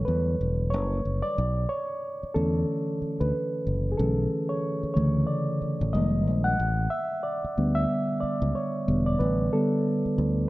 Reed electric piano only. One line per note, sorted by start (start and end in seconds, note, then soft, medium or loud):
0.00 1.39 D3 medium
0.00 1.38 F#3 soft
0.00 1.38 G3 soft
0.00 1.38 A3 medium
0.00 1.38 A4 medium
0.00 0.70 C#5 medium
0.05 0.67 B4 medium
0.70 1.19 C#5 medium
1.22 1.70 D5 loud
1.69 2.36 C#5 loud
2.34 3.28 D3 medium
2.34 3.28 E3 soft
2.34 3.29 A3 soft
2.34 3.29 C#4 medium
2.34 3.15 A4 medium
3.20 3.62 B4 medium
3.92 3.97 G#4 medium
3.97 4.27 D3 soft
3.97 4.27 E3 soft
3.97 4.28 A3 soft
3.97 4.28 C#4 soft
3.97 4.51 A4 medium
4.49 4.92 C#5 medium
4.94 5.90 C#3 medium
4.94 5.89 D3 medium
4.94 5.89 E3 medium
4.94 5.89 A3 medium
4.94 5.09 C#5 medium
5.27 5.94 D5 medium
5.93 6.55 D#3 medium
5.93 6.55 G3 soft
5.93 6.56 G#3 soft
5.93 6.56 A#3 medium
5.93 6.47 D#5 loud
6.44 6.92 F#5 loud
6.90 7.24 E5 loud
7.23 7.77 D5 medium
7.57 8.02 D3 medium
7.57 8.03 G3 medium
7.57 8.03 B3 medium
7.75 8.18 E5 medium
8.21 8.54 D5 medium
8.55 9.03 C#5 medium
8.88 9.16 D3 soft
8.88 9.17 G3 soft
8.88 9.17 B3 medium
9.06 9.12 D5 medium
9.19 9.53 B4 medium
9.53 10.46 D3 medium
9.53 10.46 G3 medium
9.53 10.47 B3 medium
9.53 10.13 A4 medium